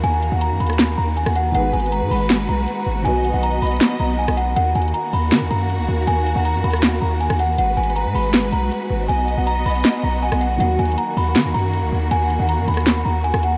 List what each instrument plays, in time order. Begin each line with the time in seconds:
Already playing: string section D#3 A#3 F#4
0.04 808-style bass D#2, celesta G#5, closed hi-hat
0.23 closed hi-hat
0.32 808-style bass D#2, celesta F#5
0.41 celesta A#5, closed hi-hat
0.51 808-style bass F#2
0.60 808-style bass D#2, celesta B5, closed hi-hat
0.67 cross-stick, closed hi-hat
0.73 closed hi-hat
0.79 snare, clap, closed hi-hat
0.97 808-style bass D#2, celesta A#5
1.17 celesta G#5, closed hi-hat
1.26 808-style bass D#2, cross-stick
1.35 celesta F#5, closed hi-hat
1.52 808-style bass G#1, grand piano D#3 G#3 B3, string section G#3 F#4 B4, celesta F#5, closed hi-hat
1.56 grand piano F#4 B4
1.73 808-style bass G#1, celesta G#5, closed hi-hat
1.80 closed hi-hat
1.86 closed hi-hat
1.92 celesta A#5, closed hi-hat
2.02 808-style bass G#2
2.11 808-style bass G#1, celesta B5, open hi-hat
2.30 snare, clap, closed hi-hat
2.48 808-style bass B1, celesta A#5, closed hi-hat
2.68 closed hi-hat
2.87 808-style bass G#1
3.02 808-style bass B1, grand piano D#3 F#3 B3, string section B3 D#5, celesta G#5, closed hi-hat
3.07 grand piano F#4 B4
3.24 closed hi-hat
3.34 808-style bass B1, celesta F#5
3.43 celesta A#5, closed hi-hat
3.62 808-style bass B1, celesta B5, closed hi-hat, open hi-hat
3.67 closed hi-hat
3.71 closed hi-hat
3.76 closed hi-hat
3.81 snare, clap, closed hi-hat
4.00 808-style bass B1, celesta A#5
4.19 celesta G#5, closed hi-hat
4.28 808-style bass B1, cross-stick, closed hi-hat
4.37 celesta F#5, closed hi-hat
4.56 808-style bass D#2, string section D#3 A#3 F#4, celesta F#5, closed hi-hat
4.75 808-style bass D#2, celesta G#5, closed hi-hat
4.82 closed hi-hat
4.88 closed hi-hat
4.94 celesta A#5, closed hi-hat
5.13 808-style bass D#2, celesta B5, open hi-hat
5.32 808-style bass D#3, snare, clap, closed hi-hat
5.41 808-style bass D#2
5.51 808-style bass F#2, celesta A#5, closed hi-hat
5.70 closed hi-hat
5.79 808-style bass D2
5.88 808-style bass D#2
6.07 808-style bass D#2, celesta G#5, closed hi-hat
6.26 closed hi-hat
6.35 808-style bass D#2, celesta F#5
6.45 celesta A#5, closed hi-hat
6.55 808-style bass F#2
6.64 808-style bass D#2, celesta B5, closed hi-hat
6.70 cross-stick, closed hi-hat
6.77 closed hi-hat
6.83 snare, clap, closed hi-hat
7.01 808-style bass D#2, celesta A#5
7.20 celesta G#5, closed hi-hat
7.30 808-style bass D#2, cross-stick
7.39 celesta F#5, closed hi-hat
7.58 808-style bass G#1, string section G#3 F#4 B4, celesta F#5, closed hi-hat
7.77 808-style bass G#1, celesta G#5, closed hi-hat
7.83 closed hi-hat
7.90 closed hi-hat
7.96 celesta A#5, closed hi-hat
8.05 808-style bass G#2
8.15 808-style bass G#1, celesta B5, open hi-hat
8.34 snare, clap, closed hi-hat
8.52 808-style bass B1, celesta A#5, closed hi-hat
8.71 closed hi-hat
8.90 808-style bass G#1
9.08 808-style bass B1, string section B3 D#5, celesta G#5, closed hi-hat
9.28 closed hi-hat
9.37 808-style bass B1, celesta F#5
9.47 celesta A#5, closed hi-hat
9.66 808-style bass B1, celesta B5, closed hi-hat, open hi-hat
9.71 closed hi-hat
9.75 closed hi-hat
9.80 closed hi-hat
9.85 snare, clap, closed hi-hat
10.04 808-style bass B1, celesta A#5
10.22 celesta G#5, closed hi-hat
10.32 808-style bass B1, cross-stick, closed hi-hat
10.41 celesta F#5, closed hi-hat
10.57 808-style bass D#2, grand piano D#3 F#3 A#3, string section D#3 A#3, celesta F#5, closed hi-hat
10.62 grand piano F#4
10.79 808-style bass D#2, celesta G#5, closed hi-hat
10.85 closed hi-hat
10.92 closed hi-hat
10.98 celesta A#5, closed hi-hat
11.17 808-style bass D#2, celesta B5, open hi-hat
11.36 808-style bass D#3, snare, clap, closed hi-hat
11.45 808-style bass D#2
11.54 808-style bass F#2, celesta A#5, closed hi-hat
11.73 closed hi-hat
11.83 808-style bass D2
11.92 808-style bass D#2
12.11 808-style bass D#2, celesta G#5, closed hi-hat
12.30 closed hi-hat
12.39 808-style bass D#2, celesta F#5
12.49 celesta A#5, closed hi-hat
12.58 808-style bass F#2
12.68 808-style bass D#2, celesta B5, closed hi-hat
12.74 cross-stick, closed hi-hat
12.80 closed hi-hat
12.87 snare, clap, closed hi-hat
13.05 808-style bass D#2, celesta A#5
13.24 celesta G#5, closed hi-hat
13.34 808-style bass D#2, cross-stick
13.43 celesta F#5, closed hi-hat